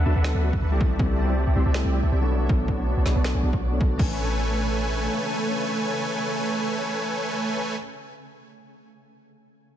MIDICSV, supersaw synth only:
0, 0, Header, 1, 2, 480
1, 0, Start_track
1, 0, Key_signature, 3, "major"
1, 0, Tempo, 375000
1, 1272, Time_signature, 4, 2, 24, 8
1, 12504, End_track
2, 0, Start_track
2, 0, Title_t, "Supersaw synth"
2, 0, Program_c, 0, 81
2, 72, Note_on_c, 0, 62, 87
2, 72, Note_on_c, 0, 69, 78
2, 72, Note_on_c, 0, 71, 79
2, 72, Note_on_c, 0, 76, 80
2, 72, Note_on_c, 0, 81, 99
2, 181, Note_off_c, 0, 62, 0
2, 181, Note_off_c, 0, 69, 0
2, 181, Note_off_c, 0, 71, 0
2, 181, Note_off_c, 0, 76, 0
2, 181, Note_off_c, 0, 81, 0
2, 200, Note_on_c, 0, 62, 88
2, 200, Note_on_c, 0, 69, 84
2, 200, Note_on_c, 0, 71, 81
2, 200, Note_on_c, 0, 76, 86
2, 200, Note_on_c, 0, 78, 98
2, 409, Note_off_c, 0, 62, 0
2, 409, Note_off_c, 0, 69, 0
2, 409, Note_off_c, 0, 71, 0
2, 409, Note_off_c, 0, 76, 0
2, 409, Note_off_c, 0, 78, 0
2, 440, Note_on_c, 0, 62, 79
2, 440, Note_on_c, 0, 69, 75
2, 440, Note_on_c, 0, 71, 71
2, 440, Note_on_c, 0, 76, 70
2, 440, Note_on_c, 0, 78, 88
2, 654, Note_off_c, 0, 62, 0
2, 654, Note_off_c, 0, 69, 0
2, 654, Note_off_c, 0, 76, 0
2, 654, Note_off_c, 0, 78, 0
2, 655, Note_off_c, 0, 71, 0
2, 680, Note_on_c, 0, 62, 74
2, 680, Note_on_c, 0, 69, 64
2, 680, Note_on_c, 0, 71, 65
2, 680, Note_on_c, 0, 76, 64
2, 680, Note_on_c, 0, 78, 81
2, 765, Note_off_c, 0, 62, 0
2, 765, Note_off_c, 0, 76, 0
2, 766, Note_off_c, 0, 69, 0
2, 766, Note_off_c, 0, 71, 0
2, 766, Note_off_c, 0, 78, 0
2, 792, Note_on_c, 0, 62, 79
2, 793, Note_on_c, 0, 69, 72
2, 793, Note_on_c, 0, 71, 72
2, 793, Note_on_c, 0, 76, 73
2, 793, Note_on_c, 0, 83, 92
2, 889, Note_off_c, 0, 62, 0
2, 890, Note_off_c, 0, 69, 0
2, 890, Note_off_c, 0, 71, 0
2, 890, Note_off_c, 0, 76, 0
2, 890, Note_off_c, 0, 83, 0
2, 919, Note_on_c, 0, 76, 74
2, 919, Note_on_c, 0, 81, 91
2, 920, Note_on_c, 0, 60, 80
2, 920, Note_on_c, 0, 67, 76
2, 920, Note_on_c, 0, 74, 70
2, 1245, Note_off_c, 0, 60, 0
2, 1245, Note_off_c, 0, 67, 0
2, 1245, Note_off_c, 0, 74, 0
2, 1245, Note_off_c, 0, 76, 0
2, 1245, Note_off_c, 0, 81, 0
2, 1273, Note_on_c, 0, 60, 93
2, 1273, Note_on_c, 0, 67, 80
2, 1273, Note_on_c, 0, 74, 82
2, 1273, Note_on_c, 0, 76, 81
2, 1273, Note_on_c, 0, 81, 97
2, 1850, Note_off_c, 0, 60, 0
2, 1850, Note_off_c, 0, 67, 0
2, 1850, Note_off_c, 0, 74, 0
2, 1850, Note_off_c, 0, 76, 0
2, 1850, Note_off_c, 0, 81, 0
2, 1880, Note_on_c, 0, 60, 70
2, 1880, Note_on_c, 0, 67, 63
2, 1880, Note_on_c, 0, 76, 64
2, 1880, Note_on_c, 0, 81, 78
2, 1881, Note_on_c, 0, 74, 65
2, 1966, Note_off_c, 0, 60, 0
2, 1966, Note_off_c, 0, 67, 0
2, 1966, Note_off_c, 0, 74, 0
2, 1966, Note_off_c, 0, 76, 0
2, 1966, Note_off_c, 0, 81, 0
2, 1992, Note_on_c, 0, 67, 83
2, 1992, Note_on_c, 0, 84, 96
2, 1993, Note_on_c, 0, 60, 88
2, 1993, Note_on_c, 0, 74, 81
2, 1993, Note_on_c, 0, 76, 76
2, 2101, Note_off_c, 0, 60, 0
2, 2101, Note_off_c, 0, 67, 0
2, 2101, Note_off_c, 0, 74, 0
2, 2101, Note_off_c, 0, 76, 0
2, 2101, Note_off_c, 0, 84, 0
2, 2120, Note_on_c, 0, 67, 82
2, 2120, Note_on_c, 0, 74, 84
2, 2120, Note_on_c, 0, 76, 83
2, 2120, Note_on_c, 0, 81, 99
2, 2121, Note_on_c, 0, 60, 88
2, 2330, Note_off_c, 0, 60, 0
2, 2330, Note_off_c, 0, 67, 0
2, 2330, Note_off_c, 0, 74, 0
2, 2330, Note_off_c, 0, 76, 0
2, 2330, Note_off_c, 0, 81, 0
2, 2360, Note_on_c, 0, 67, 73
2, 2360, Note_on_c, 0, 74, 74
2, 2361, Note_on_c, 0, 60, 80
2, 2361, Note_on_c, 0, 76, 75
2, 2361, Note_on_c, 0, 79, 88
2, 2575, Note_off_c, 0, 60, 0
2, 2575, Note_off_c, 0, 67, 0
2, 2575, Note_off_c, 0, 74, 0
2, 2575, Note_off_c, 0, 76, 0
2, 2575, Note_off_c, 0, 79, 0
2, 2600, Note_on_c, 0, 60, 76
2, 2600, Note_on_c, 0, 67, 65
2, 2600, Note_on_c, 0, 74, 68
2, 2600, Note_on_c, 0, 76, 65
2, 2600, Note_on_c, 0, 81, 80
2, 2685, Note_off_c, 0, 60, 0
2, 2685, Note_off_c, 0, 67, 0
2, 2685, Note_off_c, 0, 74, 0
2, 2685, Note_off_c, 0, 76, 0
2, 2685, Note_off_c, 0, 81, 0
2, 2712, Note_on_c, 0, 60, 79
2, 2712, Note_on_c, 0, 67, 76
2, 2712, Note_on_c, 0, 74, 74
2, 2712, Note_on_c, 0, 76, 74
2, 2712, Note_on_c, 0, 81, 91
2, 2809, Note_off_c, 0, 60, 0
2, 2809, Note_off_c, 0, 67, 0
2, 2809, Note_off_c, 0, 74, 0
2, 2809, Note_off_c, 0, 76, 0
2, 2809, Note_off_c, 0, 81, 0
2, 2839, Note_on_c, 0, 66, 73
2, 2839, Note_on_c, 0, 81, 88
2, 2840, Note_on_c, 0, 59, 82
2, 2840, Note_on_c, 0, 73, 73
2, 2840, Note_on_c, 0, 74, 70
2, 3165, Note_off_c, 0, 59, 0
2, 3165, Note_off_c, 0, 66, 0
2, 3165, Note_off_c, 0, 73, 0
2, 3165, Note_off_c, 0, 74, 0
2, 3165, Note_off_c, 0, 81, 0
2, 3193, Note_on_c, 0, 59, 88
2, 3193, Note_on_c, 0, 66, 83
2, 3193, Note_on_c, 0, 73, 82
2, 3193, Note_on_c, 0, 74, 82
2, 3193, Note_on_c, 0, 81, 99
2, 3770, Note_off_c, 0, 59, 0
2, 3770, Note_off_c, 0, 66, 0
2, 3770, Note_off_c, 0, 73, 0
2, 3770, Note_off_c, 0, 74, 0
2, 3770, Note_off_c, 0, 81, 0
2, 3800, Note_on_c, 0, 59, 71
2, 3800, Note_on_c, 0, 73, 63
2, 3800, Note_on_c, 0, 74, 63
2, 3800, Note_on_c, 0, 81, 75
2, 3801, Note_on_c, 0, 66, 63
2, 3886, Note_off_c, 0, 59, 0
2, 3886, Note_off_c, 0, 66, 0
2, 3886, Note_off_c, 0, 73, 0
2, 3886, Note_off_c, 0, 74, 0
2, 3886, Note_off_c, 0, 81, 0
2, 3912, Note_on_c, 0, 59, 86
2, 3912, Note_on_c, 0, 73, 78
2, 3912, Note_on_c, 0, 74, 77
2, 3912, Note_on_c, 0, 83, 93
2, 3913, Note_on_c, 0, 66, 80
2, 4021, Note_off_c, 0, 59, 0
2, 4021, Note_off_c, 0, 66, 0
2, 4021, Note_off_c, 0, 73, 0
2, 4021, Note_off_c, 0, 74, 0
2, 4021, Note_off_c, 0, 83, 0
2, 4039, Note_on_c, 0, 66, 84
2, 4039, Note_on_c, 0, 81, 96
2, 4040, Note_on_c, 0, 59, 90
2, 4040, Note_on_c, 0, 73, 82
2, 4040, Note_on_c, 0, 74, 83
2, 4249, Note_off_c, 0, 59, 0
2, 4249, Note_off_c, 0, 66, 0
2, 4249, Note_off_c, 0, 73, 0
2, 4249, Note_off_c, 0, 74, 0
2, 4249, Note_off_c, 0, 81, 0
2, 4279, Note_on_c, 0, 59, 80
2, 4279, Note_on_c, 0, 74, 73
2, 4280, Note_on_c, 0, 66, 73
2, 4280, Note_on_c, 0, 73, 73
2, 4280, Note_on_c, 0, 80, 87
2, 4370, Note_off_c, 0, 59, 0
2, 4370, Note_off_c, 0, 66, 0
2, 4370, Note_off_c, 0, 73, 0
2, 4370, Note_off_c, 0, 74, 0
2, 4370, Note_off_c, 0, 80, 0
2, 4392, Note_on_c, 0, 59, 72
2, 4392, Note_on_c, 0, 66, 67
2, 4392, Note_on_c, 0, 73, 67
2, 4392, Note_on_c, 0, 74, 68
2, 4392, Note_on_c, 0, 81, 82
2, 4489, Note_off_c, 0, 59, 0
2, 4489, Note_off_c, 0, 66, 0
2, 4489, Note_off_c, 0, 73, 0
2, 4489, Note_off_c, 0, 74, 0
2, 4489, Note_off_c, 0, 81, 0
2, 4520, Note_on_c, 0, 59, 90
2, 4520, Note_on_c, 0, 66, 85
2, 4520, Note_on_c, 0, 74, 83
2, 4520, Note_on_c, 0, 85, 102
2, 4521, Note_on_c, 0, 73, 87
2, 4846, Note_off_c, 0, 59, 0
2, 4846, Note_off_c, 0, 66, 0
2, 4846, Note_off_c, 0, 73, 0
2, 4846, Note_off_c, 0, 74, 0
2, 4846, Note_off_c, 0, 85, 0
2, 4872, Note_on_c, 0, 59, 86
2, 4872, Note_on_c, 0, 66, 82
2, 4872, Note_on_c, 0, 74, 79
2, 4872, Note_on_c, 0, 81, 95
2, 4873, Note_on_c, 0, 73, 79
2, 5085, Note_off_c, 0, 66, 0
2, 5085, Note_off_c, 0, 81, 0
2, 5086, Note_off_c, 0, 59, 0
2, 5086, Note_off_c, 0, 73, 0
2, 5086, Note_off_c, 0, 74, 0
2, 5113, Note_on_c, 0, 57, 82
2, 5113, Note_on_c, 0, 69, 73
2, 5113, Note_on_c, 0, 71, 77
2, 5113, Note_on_c, 0, 73, 74
2, 5113, Note_on_c, 0, 80, 87
2, 9925, Note_off_c, 0, 57, 0
2, 9925, Note_off_c, 0, 69, 0
2, 9926, Note_off_c, 0, 71, 0
2, 9926, Note_off_c, 0, 73, 0
2, 9926, Note_off_c, 0, 80, 0
2, 12504, End_track
0, 0, End_of_file